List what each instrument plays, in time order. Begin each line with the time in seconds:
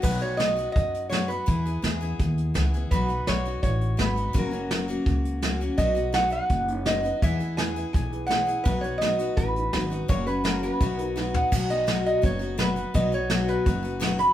0.02 upright bass B1, steel-string acoustic guitar B2 F#3 B3 D#4 F#4, resonator guitar played with a steel bar B4, kick, crash
0.19 steel-string acoustic guitar B3 D#4 F#4, resonator guitar played with a steel bar C#5, closed hi-hat
0.37 steel-string acoustic guitar F#3 B3 D#4 F#4, resonator guitar played with a steel bar D#5, snare, closed hi-hat
0.56 steel-string acoustic guitar B3 D#4 F#4, closed hi-hat
0.72 upright bass F#2, resonator guitar played with a steel bar D#5, kick, closed hi-hat
0.94 closed hi-hat
1.09 steel-string acoustic guitar F#3 B3 D#4 F#4, resonator guitar played with a steel bar C#5, snare, closed hi-hat
1.28 steel-string acoustic guitar B3 D#4 F#4, resonator guitar played with a steel bar B4, closed hi-hat
1.46 upright bass E2, steel-string acoustic guitar E3 B3 E4 G#4, kick, closed hi-hat
1.66 steel-string acoustic guitar B3 E4 G#4, closed hi-hat
1.82 upright bass E2, steel-string acoustic guitar E3 B3 E4 G#4, snare, closed hi-hat
2.01 steel-string acoustic guitar B3 E4 G#4, closed hi-hat
2.19 upright bass D#2, kick, closed hi-hat
2.38 closed hi-hat
2.54 upright bass C#2, steel-string acoustic guitar E3 B3 E4 G#4, snare, closed hi-hat
2.74 steel-string acoustic guitar B3 E4 G#4, closed hi-hat
2.91 upright bass B1, steel-string acoustic guitar B2 F#3 B3 D#4 F#4, resonator guitar played with a steel bar B4, kick, closed hi-hat
3.08 steel-string acoustic guitar B3 D#4 F#4, closed hi-hat
3.27 upright bass B1, steel-string acoustic guitar F#3 B3 D#4 F#4, resonator guitar played with a steel bar C#5, snare, closed hi-hat
3.45 steel-string acoustic guitar B3 D#4 F#4, closed hi-hat
3.63 upright bass A1, resonator guitar played with a steel bar C#5, kick, closed hi-hat
3.81 closed hi-hat
3.97 upright bass G#1, steel-string acoustic guitar F#3 B3 D#4 F#4, resonator guitar played with a steel bar B4, snare, closed hi-hat
4.16 steel-string acoustic guitar B3 D#4 F#4, closed hi-hat
4.33 upright bass F#1, steel-string acoustic guitar F#2 C#3 F#3 A#3 C#4 F#4, kick, closed hi-hat
4.39 resonator guitar played with a steel bar A#4
4.51 steel-string acoustic guitar F#3 A#3 C#4 F#4, closed hi-hat
4.71 steel-string acoustic guitar F#3 A#3 C#4 F#4, snare, closed hi-hat
4.88 steel-string acoustic guitar F#3 A#3 C#4 F#4, closed hi-hat
5.06 upright bass C#2, kick, closed hi-hat
5.25 closed hi-hat
5.42 steel-string acoustic guitar F#3 A#3 C#4 F#4, snare, closed hi-hat
5.61 steel-string acoustic guitar F#3 A#3 C#4 F#4, closed hi-hat
5.78 upright bass B1, steel-string acoustic guitar B2 F#3 B3 D#4 F#4, resonator guitar played with a steel bar D#5, kick, closed hi-hat
5.95 steel-string acoustic guitar B3 D#4 F#4, closed hi-hat
6.12 steel-string acoustic guitar F#3 B3 D#4 F#4, upright piano D#4 F#4 B4, resonator guitar played with a steel bar F#5, snare, closed hi-hat
6.30 steel-string acoustic guitar B3 D#4 F#4, resonator guitar played with a steel bar F#5, closed hi-hat
6.49 upright bass F#1, kick, closed hi-hat
6.67 upright piano D#4 F#4 C#5, closed hi-hat
6.85 steel-string acoustic guitar F#3 B3 D#4 F#4, upright piano D#4 F#4 B4, resonator guitar played with a steel bar D#5, snare, closed hi-hat
7.03 steel-string acoustic guitar B3 D#4 F#4, closed hi-hat
7.22 upright bass E2, steel-string acoustic guitar E3 B3 E4 G#4, resonator guitar played with a steel bar E5, kick, closed hi-hat
7.39 steel-string acoustic guitar B3 E4 G#4, closed hi-hat
7.57 steel-string acoustic guitar E3 B3 E4 G#4, upright piano E4 G#4 B4, resonator guitar played with a steel bar G#5, snare, closed hi-hat
7.76 steel-string acoustic guitar B3 E4 G#4, closed hi-hat
7.93 upright bass B1, resonator guitar played with a steel bar G#5, kick, closed hi-hat
8.11 upright piano E4 G#4 B4, closed hi-hat
8.27 steel-string acoustic guitar E3 B3 E4, upright piano E4 G#4, resonator guitar played with a steel bar F#5, snare, closed hi-hat
8.31 steel-string acoustic guitar G#4, upright piano C#5
8.47 steel-string acoustic guitar B3 E4 G#4, closed hi-hat
8.64 upright bass B1, steel-string acoustic guitar B2 F#3 B3 D#4 F#4, resonator guitar played with a steel bar B4, kick, closed hi-hat
8.81 steel-string acoustic guitar D#4 F#4, resonator guitar played with a steel bar C#5, closed hi-hat
8.86 steel-string acoustic guitar B3
8.98 steel-string acoustic guitar F#3, upright piano D#4, resonator guitar played with a steel bar D#5, snare, closed hi-hat
9.02 steel-string acoustic guitar B3 D#4 F#4, upright piano F#4 B4
9.19 steel-string acoustic guitar B3 D#4 F#4, closed hi-hat
9.37 upright bass A1, resonator guitar played with a steel bar B4, kick, closed hi-hat
9.54 upright piano D#4 F#4 B4, closed hi-hat
9.72 upright bass G#1, steel-string acoustic guitar F#3 B3 D#4 F#4, upright piano D#4 F#4 B4, snare, closed hi-hat
9.90 steel-string acoustic guitar B3 D#4 F#4, closed hi-hat
10.08 upright bass F#1, steel-string acoustic guitar F#2 C#3 F#3 A#3 C#4 F#4, resonator guitar played with a steel bar C#5, kick, closed hi-hat
10.27 steel-string acoustic guitar F#3 A#3 C#4 F#4, resonator guitar played with a steel bar B4, closed hi-hat
10.44 steel-string acoustic guitar F#3 A#3 C#4 F#4, upright piano C#4 F#4 A#4, resonator guitar played with a steel bar A#4, snare, closed hi-hat
10.63 steel-string acoustic guitar F#3 A#3 C#4 F#4, resonator guitar played with a steel bar B4, closed hi-hat
10.81 upright bass B1, steel-string acoustic guitar B2 F#3 B3 D#4 F#4, kick, closed hi-hat
10.98 upright piano D#4 F#4 B4, resonator guitar played with a steel bar A#4, closed hi-hat
11.16 steel-string acoustic guitar F#3 B3 D#4 F#4, upright piano D#4 F#4 B4, snare
11.34 steel-string acoustic guitar B3 D#4 F#4, resonator guitar played with a steel bar F#5, floor tom
11.52 upright bass B1, steel-string acoustic guitar B2 F#3 B3 D#4 F#4, kick, crash
11.69 steel-string acoustic guitar B3 D#4 F#4, resonator guitar played with a steel bar D#5, closed hi-hat
11.87 steel-string acoustic guitar B2 F#3 B3 D#4 F#4, snare, closed hi-hat
12.06 resonator guitar played with a steel bar D#5, closed hi-hat
12.22 upright bass F#1, steel-string acoustic guitar F#3 B3 D#4 F#4, resonator guitar played with a steel bar C#5, kick, closed hi-hat
12.39 steel-string acoustic guitar B3 D#4 F#4, closed hi-hat
12.58 steel-string acoustic guitar B2 F#3 B3 D#4 F#4, resonator guitar played with a steel bar B4, snare, closed hi-hat
12.76 steel-string acoustic guitar B3 D#4 F#4, closed hi-hat
12.94 upright bass B1, steel-string acoustic guitar B2 F#3 B3 D#4 F#4, resonator guitar played with a steel bar D#5, kick, closed hi-hat
13.12 steel-string acoustic guitar B3 D#4 F#4, resonator guitar played with a steel bar C#5, closed hi-hat
13.30 steel-string acoustic guitar B2 F#3 B3 D#4 F#4, snare, closed hi-hat
13.48 resonator guitar played with a steel bar B4, closed hi-hat
13.66 upright bass F#1, steel-string acoustic guitar F#3 B3 D#4 F#4, kick, closed hi-hat
13.83 steel-string acoustic guitar B3 D#4 F#4, closed hi-hat
14.00 steel-string acoustic guitar B2 F#3 B3 D#4 F#4, snare, closed hi-hat
14.18 steel-string acoustic guitar B3 D#4 F#4, resonator guitar played with a steel bar B5, closed hi-hat